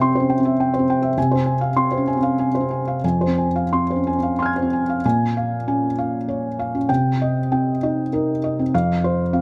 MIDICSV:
0, 0, Header, 1, 2, 480
1, 0, Start_track
1, 0, Tempo, 585366
1, 959, Time_signature, 3, 2, 24, 8
1, 1443, Tempo, 634249
1, 2403, Tempo, 669643
1, 3843, Tempo, 617284
1, 6243, Tempo, 600000
1, 7275, End_track
2, 0, Start_track
2, 0, Title_t, "Felt piano"
2, 0, Program_c, 0, 0
2, 0, Control_c, 0, 64, 127
2, 0, Note_on_c, 0, 48, 48
2, 0, Note_on_c, 0, 60, 40
2, 0, Note_on_c, 0, 72, 40
2, 0, Note_on_c, 0, 76, 38
2, 0, Note_on_c, 0, 79, 46
2, 6, Note_off_c, 0, 60, 0
2, 6, Note_on_c, 0, 60, 41
2, 12, Note_on_c, 0, 84, 55
2, 127, Note_off_c, 0, 72, 0
2, 127, Note_on_c, 0, 72, 42
2, 162, Note_on_c, 0, 61, 38
2, 201, Note_off_c, 0, 84, 0
2, 243, Note_off_c, 0, 79, 0
2, 243, Note_on_c, 0, 79, 41
2, 262, Note_off_c, 0, 60, 0
2, 318, Note_off_c, 0, 72, 0
2, 324, Note_off_c, 0, 61, 0
2, 326, Note_on_c, 0, 60, 38
2, 370, Note_off_c, 0, 76, 0
2, 370, Note_on_c, 0, 76, 46
2, 436, Note_off_c, 0, 79, 0
2, 493, Note_on_c, 0, 79, 45
2, 560, Note_off_c, 0, 76, 0
2, 582, Note_off_c, 0, 60, 0
2, 603, Note_on_c, 0, 72, 39
2, 647, Note_on_c, 0, 60, 39
2, 680, Note_off_c, 0, 79, 0
2, 736, Note_on_c, 0, 79, 41
2, 794, Note_off_c, 0, 72, 0
2, 839, Note_on_c, 0, 76, 40
2, 898, Note_off_c, 0, 60, 0
2, 919, Note_off_c, 0, 79, 0
2, 927, Note_off_c, 0, 48, 0
2, 958, Note_off_c, 0, 76, 0
2, 963, Note_on_c, 0, 48, 54
2, 966, Note_on_c, 0, 80, 47
2, 973, Control_c, 0, 64, 0
2, 1078, Note_on_c, 0, 72, 40
2, 1108, Note_on_c, 0, 60, 40
2, 1109, Control_c, 0, 64, 127
2, 1153, Note_off_c, 0, 80, 0
2, 1195, Note_on_c, 0, 80, 45
2, 1270, Note_off_c, 0, 72, 0
2, 1321, Note_on_c, 0, 77, 39
2, 1372, Note_off_c, 0, 60, 0
2, 1392, Note_off_c, 0, 80, 0
2, 1447, Note_on_c, 0, 84, 57
2, 1448, Note_on_c, 0, 60, 38
2, 1514, Note_off_c, 0, 77, 0
2, 1561, Note_on_c, 0, 72, 38
2, 1606, Note_on_c, 0, 61, 36
2, 1632, Note_off_c, 0, 84, 0
2, 1681, Note_on_c, 0, 80, 40
2, 1695, Note_off_c, 0, 60, 0
2, 1749, Note_off_c, 0, 72, 0
2, 1754, Note_on_c, 0, 60, 38
2, 1759, Note_off_c, 0, 61, 0
2, 1798, Note_on_c, 0, 77, 38
2, 1869, Note_off_c, 0, 80, 0
2, 1921, Note_on_c, 0, 80, 40
2, 1988, Note_off_c, 0, 77, 0
2, 2009, Note_off_c, 0, 60, 0
2, 2039, Note_on_c, 0, 72, 34
2, 2082, Note_on_c, 0, 60, 34
2, 2110, Note_off_c, 0, 80, 0
2, 2159, Note_on_c, 0, 80, 33
2, 2231, Note_off_c, 0, 72, 0
2, 2288, Note_on_c, 0, 77, 34
2, 2341, Note_off_c, 0, 60, 0
2, 2355, Note_off_c, 0, 80, 0
2, 2376, Note_off_c, 0, 48, 0
2, 2409, Note_off_c, 0, 77, 0
2, 2411, Note_on_c, 0, 41, 38
2, 2415, Note_on_c, 0, 80, 38
2, 2419, Control_c, 0, 64, 0
2, 2533, Note_on_c, 0, 72, 33
2, 2560, Control_c, 0, 64, 127
2, 2577, Note_on_c, 0, 60, 31
2, 2604, Note_off_c, 0, 80, 0
2, 2654, Note_on_c, 0, 80, 33
2, 2726, Note_off_c, 0, 72, 0
2, 2782, Note_on_c, 0, 77, 34
2, 2834, Note_off_c, 0, 60, 0
2, 2848, Note_off_c, 0, 80, 0
2, 2904, Note_on_c, 0, 84, 43
2, 2905, Note_on_c, 0, 60, 31
2, 2973, Note_off_c, 0, 77, 0
2, 3031, Note_on_c, 0, 72, 28
2, 3069, Note_on_c, 0, 61, 26
2, 3094, Note_off_c, 0, 84, 0
2, 3149, Note_on_c, 0, 80, 31
2, 3158, Note_off_c, 0, 60, 0
2, 3216, Note_off_c, 0, 72, 0
2, 3223, Note_off_c, 0, 61, 0
2, 3232, Note_on_c, 0, 60, 28
2, 3265, Note_on_c, 0, 77, 30
2, 3333, Note_off_c, 0, 80, 0
2, 3378, Note_on_c, 0, 84, 25
2, 3385, Note_on_c, 0, 80, 33
2, 3404, Note_on_c, 0, 89, 26
2, 3426, Note_on_c, 0, 92, 25
2, 3449, Note_off_c, 0, 77, 0
2, 3476, Note_off_c, 0, 60, 0
2, 3502, Note_on_c, 0, 72, 28
2, 3545, Note_on_c, 0, 60, 28
2, 3568, Note_off_c, 0, 80, 0
2, 3622, Note_on_c, 0, 80, 29
2, 3687, Note_off_c, 0, 72, 0
2, 3741, Note_on_c, 0, 77, 30
2, 3791, Note_off_c, 0, 60, 0
2, 3805, Note_off_c, 0, 80, 0
2, 3818, Note_off_c, 0, 84, 0
2, 3820, Note_off_c, 0, 41, 0
2, 3831, Note_off_c, 0, 89, 0
2, 3842, Note_off_c, 0, 92, 0
2, 3851, Note_off_c, 0, 77, 0
2, 3856, Note_on_c, 0, 46, 46
2, 3857, Note_on_c, 0, 80, 56
2, 3860, Control_c, 0, 64, 0
2, 3999, Control_c, 0, 64, 127
2, 4102, Note_on_c, 0, 77, 38
2, 4243, Note_off_c, 0, 80, 0
2, 4340, Note_on_c, 0, 61, 36
2, 4342, Note_on_c, 0, 80, 35
2, 4481, Note_off_c, 0, 77, 0
2, 4527, Note_off_c, 0, 61, 0
2, 4579, Note_on_c, 0, 77, 38
2, 4717, Note_off_c, 0, 80, 0
2, 4812, Note_on_c, 0, 73, 38
2, 4954, Note_off_c, 0, 77, 0
2, 5053, Note_on_c, 0, 77, 37
2, 5172, Note_on_c, 0, 61, 36
2, 5191, Note_off_c, 0, 73, 0
2, 5259, Note_off_c, 0, 46, 0
2, 5283, Note_on_c, 0, 79, 52
2, 5286, Note_on_c, 0, 48, 43
2, 5288, Note_off_c, 0, 61, 0
2, 5289, Note_off_c, 0, 77, 0
2, 5297, Control_c, 0, 64, 0
2, 5448, Control_c, 0, 64, 127
2, 5538, Note_on_c, 0, 75, 40
2, 5670, Note_off_c, 0, 79, 0
2, 5770, Note_on_c, 0, 60, 36
2, 5772, Note_on_c, 0, 79, 39
2, 5917, Note_off_c, 0, 75, 0
2, 5960, Note_off_c, 0, 60, 0
2, 6015, Note_on_c, 0, 63, 39
2, 6016, Note_on_c, 0, 75, 38
2, 6152, Note_off_c, 0, 79, 0
2, 6201, Note_off_c, 0, 63, 0
2, 6247, Note_on_c, 0, 70, 38
2, 6250, Note_on_c, 0, 63, 42
2, 6396, Note_off_c, 0, 75, 0
2, 6442, Note_off_c, 0, 63, 0
2, 6495, Note_on_c, 0, 75, 38
2, 6619, Note_on_c, 0, 60, 36
2, 6633, Note_off_c, 0, 70, 0
2, 6696, Note_off_c, 0, 48, 0
2, 6731, Note_off_c, 0, 75, 0
2, 6733, Note_off_c, 0, 60, 0
2, 6739, Note_on_c, 0, 41, 51
2, 6739, Note_on_c, 0, 77, 59
2, 6740, Control_c, 0, 64, 0
2, 6863, Control_c, 0, 64, 127
2, 6978, Note_on_c, 0, 72, 43
2, 7115, Note_off_c, 0, 77, 0
2, 7209, Note_on_c, 0, 60, 37
2, 7210, Note_on_c, 0, 77, 42
2, 7275, Note_off_c, 0, 41, 0
2, 7275, Note_off_c, 0, 60, 0
2, 7275, Note_off_c, 0, 72, 0
2, 7275, Note_off_c, 0, 77, 0
2, 7275, End_track
0, 0, End_of_file